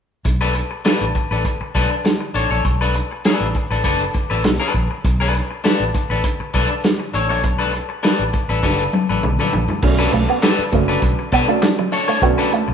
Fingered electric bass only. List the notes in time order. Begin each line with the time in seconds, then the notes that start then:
0.25 B1
1.01 A1
1.31 A1
1.61 muted fingered electric bass stroke
1.75 B1
2.35 A1
2.50 A#1
2.65 B1
3.41 A1
3.71 A1
3.84 F#1
4.31 A1
4.44 B1
4.75 A#1
5.05 B1
5.80 A1
6.10 A1
6.40 muted fingered electric bass stroke
6.54 B1
7.14 A1
7.30 A#1
7.44 B1
8.19 A1
8.49 A1
8.63 F#1
9.10 A1
9.24 B1
9.53 A#1
9.83 B1
10.13 B1
10.59 muted fingered electric bass stroke
10.73 F#1
11.02 B1
11.33 B2
12.22 B1
12.68 B1